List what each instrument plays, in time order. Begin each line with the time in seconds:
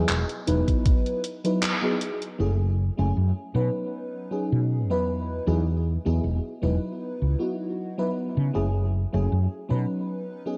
0.09 fretless electric bass E1, clap, closed hi-hat
0.29 closed hi-hat
0.47 fretless electric bass E1, fm electric piano F#3 B3 D#4 E4 B4, closed hi-hat
0.68 kick, closed hi-hat
0.86 kick, closed hi-hat
1.06 closed hi-hat
1.24 closed hi-hat
1.44 fm electric piano F#3 B3 D#4 E4 B4, closed hi-hat
1.63 clap, closed hi-hat
1.82 fm electric piano F#3 B3 D#4 E4 G#4
2.01 closed hi-hat
2.22 closed hi-hat
2.38 fretless electric bass F#1, fm electric piano F#3 A3 C#4 E4 G#4
2.97 fretless electric bass F#1, fm electric piano F#3 A3 C#4 E4 G#4
3.17 fretless electric bass F#2
3.54 fretless electric bass B2, fm electric piano F#3 B3 C#4 D#4 B4
4.31 fm electric piano F#3 B3 C#4 D#4 G#4
4.52 fretless electric bass B2
4.90 fretless electric bass E2, fm electric piano F#3 B3 D#4 E4 B4
5.46 fretless electric bass E2, fm electric piano F#3 B3 D#4 E4 G#4
6.05 fretless electric bass E2, fm electric piano F#3 B3 D#4 E4 G#4
6.24 fretless electric bass E1
6.62 fretless electric bass E1, fm electric piano F#3 B3 D#4 E4 B4
7.22 fretless electric bass C#2
7.39 fm electric piano F#3 B3 D#4 E4 F#4
7.98 fm electric piano F#3 B3 D#4 E4 B4
8.37 fretless electric bass C#3
8.53 fretless electric bass F#1, fm electric piano F#3 A3 C#4 E4 G#4
9.13 fretless electric bass F#1, fm electric piano F#3 A3 C#4 E4 G#4
9.32 fretless electric bass F#2
9.69 fretless electric bass B2, fm electric piano F#3 B3 C#4 D#4 B4
10.46 fm electric piano F#3 B3 C#4 D#4 G#4